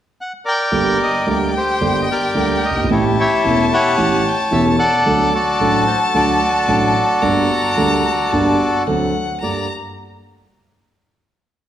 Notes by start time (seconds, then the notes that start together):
0.21 F#5
0.45 A#4 D5 G5
0.71 G1 G2 D3 G3 A#3 G4 G5
1.03 D#5
1.27 D2 D3 G3 A#3 G4 D5
1.47 D5
1.56 G4 C5
1.81 G1 G2 D3 G3 A#3 G4
2.02 D#5
2.11 G4 A#4 D5
2.35 D2 D3 G3 A#3 G4
2.65 D#5
2.71 F#1
2.77 G1
2.84 G#1
2.89 A1 A2 E3 A3 C#4 E4 G4 C#5 A5
3.19 G4 C#5 E5
3.44 E1 E2 E3 A3 C#4 G4
3.74 C#5 F#5
3.98 A1 A2 E3 A3 C#4 G4
4.27 G5
4.51 E1 E2 E3 A3 C#4 G4 E5
4.78 A4 D5 F#5
5.05 D2 D3 F#3 A3 D4 A4 A5
5.34 F#4 A4 D5
5.60 A1 A2 F#3 A3 D4 A4
5.87 C5
6.14 D2 D3 F#3 A3 D4 F#4 A4 D5
6.68 A1 A2 F#3 A3 D4 A4
7.21 G1 G2 G3 A#3 D4 A4 A#5
7.77 D2 D3 G3 A#3 D4 A4
8.31 G1 G2 G3 A#3 D4 A4 A5
8.87 D2 D3 F#3 C4 D4 A4 F#5
9.41 G2 A#3 G4 A4 D5 A#5